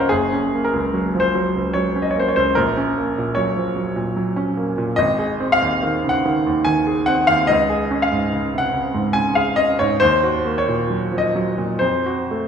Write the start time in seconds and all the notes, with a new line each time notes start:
Already playing: C#3 D#3 F3 A#3 C#4 C5 C#5 D#5 F5 F#5 G#5 A#5
0.00 A#4
0.09 F#1 G#4
0.33 C#4
0.53 A#3
0.64 A#4
0.73 C#2
0.94 F#3
1.15 F3
1.20 C5
1.35 F#3
1.56 C#2
1.73 F#3 C#5
1.96 C#4
2.02 D#5
2.11 C#5
2.16 A#3 C5
2.28 C#5
2.36 C#2 C5
2.55 A#1 A#4
2.77 C#4
2.98 A#3
3.18 A#2
3.35 F#3 C#5
3.56 F3
3.76 F#3
3.96 A#2
4.16 F#3
4.36 C#4
4.57 A#3
4.78 A#2
4.96 G#1 D#5
5.19 G#4
5.40 C4
5.52 F5
5.62 D#2
5.83 D#3
6.04 C#3
6.09 F#5
6.25 D#3
6.47 D#2
6.65 D#3 G#5
6.87 G#4
7.06 C4 F#5
7.27 D#2 F5
7.47 C#2 D#5
7.70 G#4
7.91 C#4
8.02 F5
8.12 G#2
8.32 C#3
8.54 C3
8.58 F#5
8.73 C#3
8.94 G#2
9.13 C#3 G#5
9.35 G#4 F5
9.56 C#4 D#5
9.79 G#2 C#5
10.00 D#2 C5
10.23 F#4
10.45 A#3
10.58 C#5
10.68 A#2
10.90 F#3
11.12 F3
11.18 D#5
11.35 F#3
11.58 A#2
11.79 F2 C5
12.06 F#4
12.31 A3